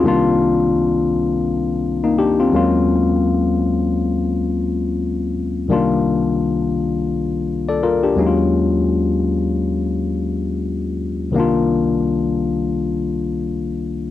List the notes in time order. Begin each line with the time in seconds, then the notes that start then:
Already playing: C4
0.03 C2 D#3 G3 A#3 D4
0.08 F4
2.04 A#3 D#4
2.18 D4 G4
2.40 C4 F4
2.52 D#2 F#3 G#3 A#3 C#4
2.56 F4
5.68 C2 D#3 G3 A#3 D4
5.73 F4
7.69 A4 D5
7.83 F4 A#4
8.03 D4 G4
8.16 D#2 F#3 G#3 A#3 C#4
8.20 D#4
8.26 F4
11.31 C2 D#3 G3
11.36 A#3 D4 F4